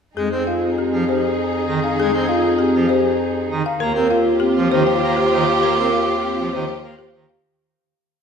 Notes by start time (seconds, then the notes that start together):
0.16 F2 G#3 D#4 G#4
0.32 C4 G#4
0.47 F4 F5
0.78 C4 G4
0.93 F3
1.08 G4 C5
1.67 D#3
1.84 F5
1.99 G#3 G#4
2.14 C4 G#4
2.29 F4 F5
2.59 C4 G4
2.75 F3
2.89 G4 C5
3.51 D#3
3.66 F5
3.80 D#2 A#3 F4 G4 A#4
3.95 C4 A#4
4.10 F4 F5
4.40 C4 G4
4.56 F3
4.71 D#3 G4 C5
4.87 G5
5.03 A#3
5.17 G4 C5
5.33 D#3
5.48 G4 F5
5.62 A#3 A#4
5.78 C4 A#4
5.93 F4 F5
6.23 C4 G4
6.38 F3
6.53 D#3 G4 C5
6.68 G5
6.84 A#3
6.99 G4 C5
7.14 D#3
7.29 G4 F5